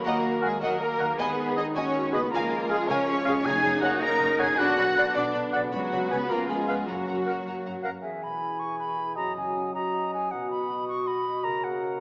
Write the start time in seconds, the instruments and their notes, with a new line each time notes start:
Already playing: harp D#3 F#3 D#4 F#4 F#5, trombone section F#3 A#3
0.00 harp A#4, violin section A#4
0.04 double bass section D#2, french horn section A#3, cello section A#3, viola section F#4, violin section D#5 F#5, flute A#5
0.41 cello section G#3, french horn section G#3, violin section G#4, clarinet A#4, cor anglais F#5, flute G#5
0.61 double bass section D#2, cello section F#3, french horn section F#3, violin section F#4 D#5 F#5, viola section A#4, flute F#5
0.81 cello section A#3, french horn section A#3, violin section A#4, flute A#5
0.98 double bass section D#2, harp D#3, clarinet A#4, violin section A#4 D#5, cor anglais F#5
1.05 harp D#4
1.10 harp G#4
1.18 double bass section D#2, trombone section D#3 G#3, cello section B3, french horn section B3, viola section G#4, violin section B4 D#5 G#5, flute B5
1.56 cello section D#4, french horn section D#4, clarinet G#4, violin section D#5, cor anglais D#5, flute D#6
1.75 double bass section D#2, cello section C#4, french horn section C#4, viola section F#4, violin section C#5 D#5 G#5, flute C#6
2.12 double bass section D#2, harp C#3, cello section B3, french horn section B3, clarinet G#4, violin section B4 D#5, cor anglais D#5, flute B5
2.19 harp F4
2.23 harp G#4
2.30 double bass section C#2, trombone section F3, french horn section A#3, cello section A#3, viola section F4, violin section A#4 F5, flute A#5
2.34 violin section G#5
2.69 french horn section G#3, cello section G#3, clarinet G#4, violin section G#4, cor anglais F5, flute G#5
2.87 double bass section C#2, cello section C#4, french horn section C#4, viola section A#4, violin section C#5 F5 G#5, flute C#6
3.08 viola section G#4
3.26 double bass section C#2, harp F#2, viola section F4, clarinet G#4, violin section C#5 F5, cor anglais F5
3.32 harp C#4
3.36 harp F#4
3.41 double bass section F#1, harp A#4, violin section G#5
3.45 timpani F#2, trombone section C#3 A#3, viola section D#4, cello section G#4, french horn section G#4, violin section C#5 A#5, flute G#6
3.64 double bass section F#1, violin section C#5 A#5
3.81 double bass section F#1, french horn section F#4, cello section F#4, clarinet C#5, violin section C#5 F#5 A#5, cor anglais F#5, flute F#6
4.01 double bass section F#1, cello section A#4, french horn section A#4, violin section C#5 A#5, flute A#6
4.21 double bass section F#1, violin section C#5 A#5
4.39 double bass section F#1, harp B2, cello section G#4, french horn section G#4, clarinet C#5, violin section C#5 G#5 A#5, cor anglais F#5, flute G#6
4.46 harp D4
4.50 harp F#4
4.55 harp B4, violin section F#5 B5, flute F#6
4.59 double bass section B1, trombone section D3 B3, viola section D4, french horn section F#4, cello section F#4, violin section D5
4.78 double bass section B1, viola section C#4, violin section D5 B5
4.95 double bass section B1, viola section D4, violin section D5 B5, clarinet D5, cor anglais F#5
5.15 double bass section B1, cello section D4, french horn section D4, violin section D5 B5, flute D6
5.34 double bass section B1, violin section D5 B5
5.53 double bass section B1, harp C#3, violin section D5 B5, clarinet D5, cor anglais F#5
5.59 harp C#4
5.64 harp F#4
5.68 cello section F#3, harp B4, violin section C#5 B5
5.73 double bass section C#2, trombone section C#3, french horn section F#3, violin section F#4, viola section F#4, flute F#5
5.92 double bass section C#2, violin section C#5 B5
6.11 double bass section C#2, harp C#3, cello section B3, french horn section B3, violin section B4 C#5 B5, clarinet B4, cor anglais G#5, flute B5
6.17 harp C#4
6.21 harp F4
6.26 cello section A#3, violin section A#4, harp B4
6.30 double bass section C#2, trombone section F3, french horn section A#3, viola section F4, violin section F5 B5, flute A#5
6.48 double bass section C#2, cello section G#3, french horn section G#3, violin section G#4 F5 B5, flute G#5
6.68 double bass section C#2, harp F#2, clarinet B4, violin section F5 B5, cor anglais F5
6.75 harp C#4
6.79 harp F#4
6.84 cello section F#3, french horn section F#3, violin section F#4 F#5 A#5, harp A#4, flute F#5
6.89 double bass section F#2, trombone section F#3 A#3, viola section F#4
7.08 double bass section F#2, violin section F#5 A#5
7.26 double bass section F#2, clarinet A#4, cor anglais F#5, violin section F#5 A#5
7.47 double bass section F#2, violin section F#5 A#5
7.65 double bass section F#2, violin section F#5 A#5
7.83 double bass section F#2, clarinet A#4, flute F5, cor anglais F#5, violin section F#5 A#5
8.02 harp E2, trombone section E3, clarinet G#4, flute E5, cor anglais G#5
8.23 harp B2, flute B5
8.42 harp E4
8.59 harp G#4, flute C#6
8.79 harp B4, flute B5
8.98 harp G#4
9.16 harp F#2, trombone section F#3, clarinet F#4, cor anglais D#5, flute A#5
9.36 harp C#3, flute G#5
9.56 harp C#4
9.74 clarinet F#4, harp F#4, cor anglais D#5, flute A#5
9.93 harp D#5
10.13 harp F#4, flute G#5
10.30 trombone section B2, harp B2, clarinet F#4, cor anglais D#5, flute F#5
10.51 harp F#3, flute B5
10.70 harp B3
10.88 harp F#4, flute C#6
11.07 harp D#5, flute B5
11.26 harp F#4
11.43 trombone section C#3, harp C#3, clarinet F#4, cor anglais A#4, flute A#5
11.64 harp A#3, flute F#5
11.83 harp F#4 C#5